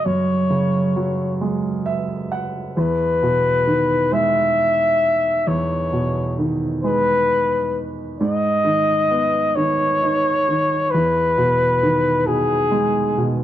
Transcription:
Already playing: grand piano F#3 G#3
0.05 grand piano F#2, flugelhorn C#5
0.50 grand piano C#3
0.96 grand piano F#3
1.41 grand piano G#3
1.86 grand piano E5
2.32 grand piano F#5
2.77 grand piano E2, flugelhorn B4
3.23 grand piano B2
3.67 grand piano D#3
4.12 grand piano G#3, flugelhorn E5
5.47 grand piano E2, flugelhorn C#5
5.93 grand piano B2
6.39 grand piano D#3
6.84 grand piano G#3, flugelhorn B4
8.20 grand piano G#2, flugelhorn D#5
8.65 grand piano D#3
9.11 grand piano B3
9.56 grand piano D#3, flugelhorn C#5
10.03 grand piano D#4
10.49 grand piano D#3
10.91 grand piano E2, flugelhorn B4
11.38 grand piano B2
11.83 grand piano D#3
12.27 grand piano B2, flugelhorn G#4
12.71 grand piano G#3
13.18 grand piano B2

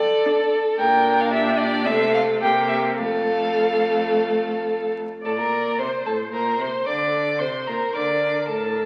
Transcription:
Already playing: cello F2, violin A4 D5
0.26 viola D4
0.79 cello A#2, viola D4, violin A#4 G5
1.21 violin F5
1.33 violin G4 E5
1.58 violin D5
1.85 cello C3, viola A3, violin A4 E5
2.14 violin F5
2.41 cello C3, viola A#3, violin G4 G5
2.68 violin E5
2.97 cello F2, viola A3, violin A4 F5
5.24 cello A2, violin A4 A5, viola D5
5.38 cello A#2, violin A#4 A#5
5.78 cello C3, violin C5 C6, viola C5
6.05 cello A2, violin A4 A5
6.31 cello A#2, violin A#4 A#5
6.58 cello C3, violin C5 C6
6.87 cello D3, viola A4, violin D5 D6
7.39 cello C3, viola C5, violin C5 C6
7.67 cello A#2, violin A#4 A#5
7.94 cello D3, viola A#4, violin D5 D6
8.49 cello A2, violin A4 A5

